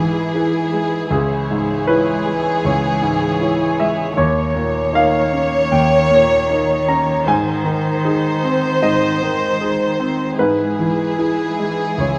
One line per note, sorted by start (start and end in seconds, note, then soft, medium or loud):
0.00 1.14 G#2 soft
0.00 1.07 E3 soft
0.00 1.15 E3 soft
0.00 0.73 G#3 soft
0.00 1.10 G#3 soft
0.00 0.35 E4 soft
0.00 4.18 E4 soft
0.00 1.08 G#4 soft
0.00 0.36 B4 soft
0.00 1.12 B4 soft
0.00 0.70 E5 medium
0.00 1.15 F#5 medium
0.35 0.70 E4 soft
0.35 0.70 B4 soft
0.73 1.12 G#3 soft
1.11 2.60 C#2 soft
1.11 4.13 E3 medium
1.11 4.13 G#3 soft
1.11 1.84 G#4 medium
1.11 4.14 G#4 soft
1.11 7.27 C#5 soft
1.51 2.11 G#2 soft
1.88 2.23 E4 soft
1.88 2.60 B4 medium
1.88 2.23 C#5 soft
2.26 2.88 G#3 soft
2.65 4.14 C#2 soft
2.65 3.41 C#5 medium
3.02 3.64 G#2 soft
3.41 3.75 E4 soft
3.41 3.76 C#5 soft
3.80 4.18 G#3 soft
3.80 4.15 E5 medium
4.17 5.68 D#2 medium
4.17 10.34 D#3 medium
4.17 7.28 A#3 soft
4.17 10.39 D#4 soft
4.17 4.90 C#5 medium
4.17 7.24 C#5 medium
4.55 5.18 A#2 soft
4.93 5.29 D#4 soft
4.93 5.29 A#4 soft
4.93 5.69 F5 medium
5.33 5.95 C#4 soft
5.72 7.24 D#2 soft
5.72 6.85 G5 medium
6.11 6.73 A#2 soft
6.50 6.85 D#4 soft
6.50 6.85 A#4 soft
6.88 7.28 C#4 soft
6.88 7.25 A#5 medium
7.27 8.78 G#2 medium
7.27 12.19 G#3 soft
7.27 10.38 C5 soft
7.27 10.35 C5 medium
7.27 8.78 G#5 medium
7.65 8.27 D#3 soft
8.05 8.40 D#4 soft
8.05 8.40 G#4 soft
8.44 9.06 C4 soft
8.82 10.35 G#2 soft
8.82 10.35 D#5 medium
9.23 9.84 D#3 soft
9.61 9.96 D#4 soft
9.61 9.96 G#4 soft
10.00 10.39 C4 soft
10.39 11.96 G#2 soft
10.39 12.19 E3 soft
10.39 12.19 E4 soft
10.39 12.19 G#4 soft
10.39 11.99 B4 soft
10.39 11.95 B4 medium
10.79 11.43 E3 soft
11.19 11.55 E4 soft
11.19 11.55 G#4 soft
11.59 12.00 G#3 soft
11.98 12.19 C#2 soft
11.98 12.19 G#4 soft
11.98 12.19 C#5 soft